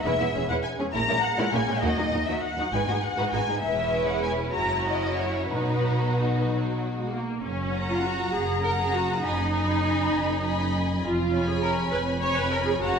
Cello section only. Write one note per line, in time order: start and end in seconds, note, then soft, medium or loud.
0.05 0.11 E2 medium
0.20 0.26 E2 soft
0.34 0.40 E2 soft
0.49 0.55 E2 medium
0.78 0.84 E2 soft
0.94 1.00 A#2 medium
1.09 1.15 A#2 soft
1.38 1.44 A#2 medium
1.53 1.59 A#2 soft
1.68 1.74 A#2 soft
1.82 1.88 D#2 soft
1.98 2.04 D#2 soft
2.12 2.18 D#2 soft
2.27 2.33 D#2 soft
2.58 2.63 D#2 soft
2.72 2.78 G#2 medium
2.87 2.93 G#2 soft
3.17 3.23 G#2 medium
3.33 3.39 G#2 soft
3.48 3.54 G#2 soft
3.64 4.52 E2 soft
4.56 5.49 F#2 soft
5.52 7.22 B2 soft
7.43 8.23 F#2 soft
8.34 9.14 F#2 soft
9.25 10.04 F#2 soft
10.14 10.93 F#2 soft
11.03 11.82 F2 medium
11.93 12.71 F2 medium
12.81 12.99 F#2 medium